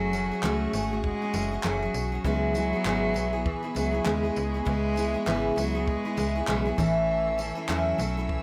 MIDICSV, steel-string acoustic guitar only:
0, 0, Header, 1, 2, 480
1, 0, Start_track
1, 0, Key_signature, 4, "minor"
1, 0, Tempo, 604839
1, 1782, Time_signature, 4, 2, 24, 8
1, 6687, End_track
2, 0, Start_track
2, 0, Title_t, "Steel-string acoustic guitar"
2, 0, Program_c, 0, 25
2, 0, Note_on_c, 0, 54, 79
2, 0, Note_on_c, 0, 57, 75
2, 0, Note_on_c, 0, 61, 86
2, 0, Note_on_c, 0, 66, 101
2, 0, Note_on_c, 0, 68, 88
2, 93, Note_off_c, 0, 57, 0
2, 100, Note_off_c, 0, 54, 0
2, 102, Note_off_c, 0, 61, 0
2, 102, Note_on_c, 0, 57, 72
2, 106, Note_off_c, 0, 66, 0
2, 107, Note_off_c, 0, 68, 0
2, 111, Note_on_c, 0, 61, 71
2, 116, Note_on_c, 0, 66, 75
2, 124, Note_on_c, 0, 68, 74
2, 241, Note_off_c, 0, 68, 0
2, 247, Note_off_c, 0, 57, 0
2, 250, Note_on_c, 0, 68, 61
2, 251, Note_off_c, 0, 61, 0
2, 253, Note_off_c, 0, 66, 0
2, 263, Note_on_c, 0, 66, 53
2, 275, Note_on_c, 0, 61, 47
2, 345, Note_off_c, 0, 68, 0
2, 348, Note_on_c, 0, 54, 91
2, 349, Note_off_c, 0, 61, 0
2, 351, Note_off_c, 0, 66, 0
2, 352, Note_on_c, 0, 57, 96
2, 358, Note_on_c, 0, 61, 94
2, 360, Note_on_c, 0, 66, 93
2, 363, Note_on_c, 0, 68, 98
2, 572, Note_off_c, 0, 57, 0
2, 580, Note_off_c, 0, 61, 0
2, 582, Note_on_c, 0, 57, 67
2, 585, Note_off_c, 0, 54, 0
2, 589, Note_off_c, 0, 66, 0
2, 590, Note_on_c, 0, 61, 71
2, 593, Note_off_c, 0, 68, 0
2, 598, Note_on_c, 0, 66, 75
2, 604, Note_on_c, 0, 68, 81
2, 714, Note_off_c, 0, 68, 0
2, 723, Note_on_c, 0, 68, 51
2, 726, Note_off_c, 0, 57, 0
2, 726, Note_off_c, 0, 66, 0
2, 730, Note_off_c, 0, 61, 0
2, 736, Note_on_c, 0, 66, 58
2, 746, Note_on_c, 0, 61, 48
2, 957, Note_off_c, 0, 68, 0
2, 967, Note_on_c, 0, 68, 57
2, 971, Note_off_c, 0, 66, 0
2, 976, Note_off_c, 0, 61, 0
2, 979, Note_on_c, 0, 66, 48
2, 986, Note_on_c, 0, 61, 40
2, 1058, Note_off_c, 0, 61, 0
2, 1059, Note_on_c, 0, 57, 73
2, 1063, Note_off_c, 0, 68, 0
2, 1068, Note_on_c, 0, 61, 73
2, 1069, Note_off_c, 0, 66, 0
2, 1077, Note_on_c, 0, 66, 73
2, 1081, Note_on_c, 0, 68, 74
2, 1192, Note_off_c, 0, 68, 0
2, 1201, Note_on_c, 0, 68, 61
2, 1204, Note_off_c, 0, 57, 0
2, 1204, Note_off_c, 0, 66, 0
2, 1209, Note_off_c, 0, 61, 0
2, 1213, Note_on_c, 0, 66, 51
2, 1223, Note_on_c, 0, 61, 50
2, 1299, Note_off_c, 0, 61, 0
2, 1300, Note_off_c, 0, 68, 0
2, 1300, Note_on_c, 0, 54, 95
2, 1304, Note_off_c, 0, 66, 0
2, 1305, Note_on_c, 0, 57, 94
2, 1309, Note_on_c, 0, 61, 88
2, 1314, Note_on_c, 0, 66, 95
2, 1317, Note_on_c, 0, 68, 89
2, 1438, Note_off_c, 0, 68, 0
2, 1445, Note_off_c, 0, 54, 0
2, 1447, Note_off_c, 0, 57, 0
2, 1447, Note_on_c, 0, 68, 57
2, 1449, Note_off_c, 0, 61, 0
2, 1449, Note_off_c, 0, 66, 0
2, 1459, Note_on_c, 0, 66, 48
2, 1472, Note_on_c, 0, 61, 48
2, 1672, Note_off_c, 0, 68, 0
2, 1681, Note_on_c, 0, 68, 52
2, 1687, Note_off_c, 0, 66, 0
2, 1696, Note_on_c, 0, 66, 49
2, 1697, Note_off_c, 0, 61, 0
2, 1706, Note_on_c, 0, 61, 46
2, 1779, Note_off_c, 0, 68, 0
2, 1783, Note_on_c, 0, 49, 76
2, 1787, Note_off_c, 0, 66, 0
2, 1787, Note_on_c, 0, 56, 85
2, 1788, Note_off_c, 0, 61, 0
2, 1791, Note_on_c, 0, 59, 86
2, 1797, Note_on_c, 0, 64, 91
2, 1799, Note_on_c, 0, 68, 87
2, 2008, Note_off_c, 0, 56, 0
2, 2018, Note_on_c, 0, 56, 62
2, 2019, Note_off_c, 0, 59, 0
2, 2022, Note_off_c, 0, 49, 0
2, 2029, Note_off_c, 0, 64, 0
2, 2029, Note_on_c, 0, 59, 69
2, 2031, Note_off_c, 0, 68, 0
2, 2038, Note_on_c, 0, 64, 80
2, 2045, Note_on_c, 0, 68, 75
2, 2155, Note_off_c, 0, 68, 0
2, 2164, Note_off_c, 0, 56, 0
2, 2165, Note_on_c, 0, 68, 57
2, 2169, Note_off_c, 0, 59, 0
2, 2169, Note_off_c, 0, 64, 0
2, 2179, Note_on_c, 0, 64, 49
2, 2188, Note_on_c, 0, 59, 46
2, 2260, Note_off_c, 0, 59, 0
2, 2261, Note_off_c, 0, 68, 0
2, 2261, Note_on_c, 0, 49, 86
2, 2265, Note_off_c, 0, 64, 0
2, 2268, Note_on_c, 0, 56, 90
2, 2269, Note_on_c, 0, 59, 88
2, 2274, Note_on_c, 0, 64, 98
2, 2278, Note_on_c, 0, 68, 91
2, 2483, Note_off_c, 0, 56, 0
2, 2493, Note_on_c, 0, 56, 66
2, 2494, Note_off_c, 0, 59, 0
2, 2500, Note_off_c, 0, 64, 0
2, 2501, Note_off_c, 0, 49, 0
2, 2504, Note_on_c, 0, 59, 75
2, 2510, Note_off_c, 0, 68, 0
2, 2510, Note_on_c, 0, 64, 79
2, 2518, Note_on_c, 0, 68, 74
2, 2631, Note_off_c, 0, 68, 0
2, 2641, Note_off_c, 0, 56, 0
2, 2641, Note_on_c, 0, 68, 60
2, 2644, Note_off_c, 0, 64, 0
2, 2647, Note_off_c, 0, 59, 0
2, 2654, Note_on_c, 0, 64, 52
2, 2665, Note_on_c, 0, 59, 44
2, 2868, Note_off_c, 0, 68, 0
2, 2877, Note_on_c, 0, 68, 55
2, 2881, Note_off_c, 0, 64, 0
2, 2889, Note_off_c, 0, 59, 0
2, 2890, Note_on_c, 0, 64, 52
2, 2898, Note_on_c, 0, 59, 43
2, 2973, Note_on_c, 0, 56, 65
2, 2974, Note_off_c, 0, 59, 0
2, 2977, Note_off_c, 0, 68, 0
2, 2981, Note_off_c, 0, 64, 0
2, 2983, Note_on_c, 0, 59, 68
2, 2990, Note_on_c, 0, 64, 69
2, 2999, Note_on_c, 0, 68, 80
2, 3106, Note_off_c, 0, 68, 0
2, 3116, Note_on_c, 0, 68, 53
2, 3119, Note_off_c, 0, 64, 0
2, 3122, Note_off_c, 0, 56, 0
2, 3126, Note_off_c, 0, 59, 0
2, 3129, Note_on_c, 0, 64, 57
2, 3140, Note_on_c, 0, 59, 48
2, 3210, Note_off_c, 0, 59, 0
2, 3211, Note_on_c, 0, 49, 77
2, 3213, Note_off_c, 0, 64, 0
2, 3214, Note_on_c, 0, 56, 81
2, 3217, Note_off_c, 0, 68, 0
2, 3219, Note_on_c, 0, 59, 98
2, 3223, Note_on_c, 0, 64, 92
2, 3227, Note_on_c, 0, 68, 97
2, 3350, Note_off_c, 0, 68, 0
2, 3360, Note_off_c, 0, 49, 0
2, 3360, Note_off_c, 0, 64, 0
2, 3360, Note_on_c, 0, 68, 59
2, 3362, Note_off_c, 0, 56, 0
2, 3364, Note_off_c, 0, 59, 0
2, 3370, Note_on_c, 0, 64, 52
2, 3381, Note_on_c, 0, 59, 50
2, 3595, Note_off_c, 0, 68, 0
2, 3604, Note_off_c, 0, 64, 0
2, 3605, Note_on_c, 0, 68, 56
2, 3613, Note_off_c, 0, 59, 0
2, 3614, Note_on_c, 0, 64, 53
2, 3624, Note_on_c, 0, 59, 44
2, 3691, Note_off_c, 0, 59, 0
2, 3692, Note_on_c, 0, 49, 80
2, 3695, Note_off_c, 0, 64, 0
2, 3697, Note_on_c, 0, 56, 76
2, 3698, Note_off_c, 0, 68, 0
2, 3701, Note_on_c, 0, 59, 82
2, 3704, Note_on_c, 0, 64, 82
2, 3708, Note_on_c, 0, 68, 81
2, 3926, Note_off_c, 0, 56, 0
2, 3936, Note_on_c, 0, 56, 68
2, 3937, Note_off_c, 0, 49, 0
2, 3938, Note_off_c, 0, 59, 0
2, 3941, Note_off_c, 0, 64, 0
2, 3945, Note_off_c, 0, 68, 0
2, 3948, Note_on_c, 0, 59, 78
2, 3950, Note_on_c, 0, 64, 78
2, 3961, Note_on_c, 0, 68, 81
2, 4070, Note_off_c, 0, 68, 0
2, 4079, Note_on_c, 0, 68, 57
2, 4083, Note_off_c, 0, 56, 0
2, 4083, Note_off_c, 0, 64, 0
2, 4089, Note_off_c, 0, 59, 0
2, 4093, Note_on_c, 0, 64, 56
2, 4103, Note_on_c, 0, 59, 49
2, 4174, Note_off_c, 0, 59, 0
2, 4174, Note_on_c, 0, 49, 91
2, 4178, Note_off_c, 0, 64, 0
2, 4178, Note_off_c, 0, 68, 0
2, 4179, Note_on_c, 0, 56, 85
2, 4184, Note_on_c, 0, 59, 100
2, 4187, Note_on_c, 0, 64, 106
2, 4192, Note_on_c, 0, 68, 99
2, 4402, Note_off_c, 0, 56, 0
2, 4412, Note_on_c, 0, 56, 65
2, 4414, Note_off_c, 0, 59, 0
2, 4418, Note_off_c, 0, 49, 0
2, 4422, Note_off_c, 0, 64, 0
2, 4423, Note_on_c, 0, 59, 76
2, 4425, Note_off_c, 0, 68, 0
2, 4431, Note_on_c, 0, 64, 75
2, 4435, Note_on_c, 0, 68, 77
2, 4552, Note_off_c, 0, 68, 0
2, 4561, Note_off_c, 0, 56, 0
2, 4561, Note_on_c, 0, 68, 66
2, 4562, Note_off_c, 0, 64, 0
2, 4566, Note_off_c, 0, 59, 0
2, 4572, Note_on_c, 0, 64, 53
2, 4582, Note_on_c, 0, 59, 48
2, 4792, Note_off_c, 0, 68, 0
2, 4802, Note_on_c, 0, 68, 59
2, 4803, Note_off_c, 0, 64, 0
2, 4812, Note_on_c, 0, 64, 54
2, 4814, Note_off_c, 0, 59, 0
2, 4823, Note_on_c, 0, 59, 46
2, 4896, Note_off_c, 0, 59, 0
2, 4897, Note_on_c, 0, 56, 66
2, 4900, Note_off_c, 0, 68, 0
2, 4905, Note_off_c, 0, 64, 0
2, 4905, Note_on_c, 0, 59, 68
2, 4915, Note_on_c, 0, 64, 72
2, 4921, Note_on_c, 0, 68, 70
2, 5034, Note_off_c, 0, 68, 0
2, 5043, Note_off_c, 0, 56, 0
2, 5044, Note_on_c, 0, 68, 59
2, 5046, Note_off_c, 0, 64, 0
2, 5047, Note_off_c, 0, 59, 0
2, 5056, Note_on_c, 0, 64, 57
2, 5064, Note_on_c, 0, 59, 48
2, 5139, Note_off_c, 0, 59, 0
2, 5141, Note_off_c, 0, 68, 0
2, 5143, Note_on_c, 0, 49, 83
2, 5144, Note_off_c, 0, 64, 0
2, 5146, Note_on_c, 0, 56, 92
2, 5149, Note_on_c, 0, 59, 93
2, 5154, Note_on_c, 0, 64, 100
2, 5156, Note_on_c, 0, 68, 109
2, 5271, Note_off_c, 0, 68, 0
2, 5280, Note_on_c, 0, 68, 63
2, 5283, Note_off_c, 0, 64, 0
2, 5286, Note_off_c, 0, 49, 0
2, 5288, Note_off_c, 0, 56, 0
2, 5289, Note_off_c, 0, 59, 0
2, 5292, Note_on_c, 0, 64, 54
2, 5304, Note_on_c, 0, 59, 53
2, 5379, Note_off_c, 0, 68, 0
2, 5380, Note_on_c, 0, 45, 82
2, 5382, Note_on_c, 0, 52, 77
2, 5383, Note_off_c, 0, 64, 0
2, 5387, Note_on_c, 0, 57, 78
2, 5388, Note_off_c, 0, 59, 0
2, 5392, Note_on_c, 0, 61, 85
2, 5392, Note_on_c, 0, 64, 82
2, 5397, Note_on_c, 0, 69, 90
2, 5851, Note_off_c, 0, 57, 0
2, 5854, Note_on_c, 0, 57, 65
2, 5860, Note_off_c, 0, 64, 0
2, 5861, Note_off_c, 0, 45, 0
2, 5862, Note_off_c, 0, 52, 0
2, 5862, Note_off_c, 0, 61, 0
2, 5865, Note_on_c, 0, 61, 69
2, 5870, Note_on_c, 0, 64, 74
2, 5875, Note_off_c, 0, 69, 0
2, 5878, Note_on_c, 0, 69, 78
2, 5984, Note_off_c, 0, 69, 0
2, 5994, Note_on_c, 0, 69, 62
2, 5996, Note_off_c, 0, 64, 0
2, 6001, Note_off_c, 0, 61, 0
2, 6002, Note_off_c, 0, 57, 0
2, 6005, Note_on_c, 0, 64, 56
2, 6011, Note_on_c, 0, 61, 54
2, 6018, Note_on_c, 0, 57, 50
2, 6096, Note_off_c, 0, 69, 0
2, 6097, Note_off_c, 0, 57, 0
2, 6101, Note_off_c, 0, 61, 0
2, 6101, Note_off_c, 0, 64, 0
2, 6101, Note_on_c, 0, 45, 85
2, 6103, Note_on_c, 0, 52, 94
2, 6107, Note_on_c, 0, 57, 96
2, 6110, Note_on_c, 0, 61, 102
2, 6112, Note_on_c, 0, 64, 103
2, 6117, Note_on_c, 0, 69, 108
2, 6325, Note_off_c, 0, 57, 0
2, 6334, Note_on_c, 0, 57, 70
2, 6335, Note_off_c, 0, 61, 0
2, 6341, Note_off_c, 0, 45, 0
2, 6342, Note_off_c, 0, 52, 0
2, 6343, Note_off_c, 0, 64, 0
2, 6345, Note_on_c, 0, 61, 75
2, 6349, Note_off_c, 0, 69, 0
2, 6353, Note_on_c, 0, 64, 73
2, 6360, Note_on_c, 0, 69, 83
2, 6476, Note_off_c, 0, 69, 0
2, 6482, Note_off_c, 0, 57, 0
2, 6485, Note_off_c, 0, 64, 0
2, 6486, Note_on_c, 0, 69, 56
2, 6487, Note_off_c, 0, 61, 0
2, 6495, Note_on_c, 0, 64, 65
2, 6502, Note_on_c, 0, 61, 55
2, 6509, Note_on_c, 0, 57, 54
2, 6687, Note_off_c, 0, 57, 0
2, 6687, Note_off_c, 0, 61, 0
2, 6687, Note_off_c, 0, 64, 0
2, 6687, Note_off_c, 0, 69, 0
2, 6687, End_track
0, 0, End_of_file